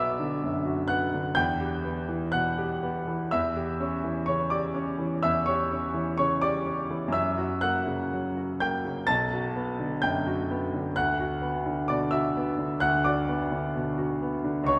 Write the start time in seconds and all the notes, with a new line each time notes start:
Already playing: B1 B3 F#4 D5 E5 D6 E6
0.20 D3
0.43 F#2
0.65 F#4
0.88 B3 F#5 F#6
1.14 D3
1.35 E2 G5 G6
1.60 G4
1.85 B3
2.09 E3
2.32 B2 F#5 F#6
2.58 G4
2.83 B3
3.08 E3
3.31 E2 E5 E6
3.57 G4
3.80 C#4
4.04 E3
4.26 C#3 C#5 C#6
4.50 G4 D5 D6
4.75 C#4
4.99 E3
5.23 E2 E5 E6
5.46 G4 C#5 C#6
5.71 C#4
5.94 E3
6.18 C#3 C#5 C#6
6.42 G4 D5 D6
6.66 C#4
6.90 E3
7.08 F#2
7.12 E5 E6
7.37 F#4
7.61 A#3 F#5 F#6
7.87 C#3
8.13 F#3
8.37 F#4
8.60 A#3 G5 G6
8.85 C#3
9.07 B1 A5 A6
9.32 F#4
9.56 B3
9.79 D3
10.02 F#2 G5 G6
10.27 F#4
10.51 B3
10.74 D3
10.96 D2 F#5 F#6
11.20 F#4
11.42 B3
11.66 D3
11.88 B2 D5 D6
12.11 F#4 E5 E6
12.37 B3
12.58 D3
12.80 D2 F#5 F#6
13.04 F#4 D5 D6
13.29 B3
13.52 D3
13.75 B2
13.98 F#4
14.22 B3
14.44 D3
14.64 C#2 C#6
14.68 C#5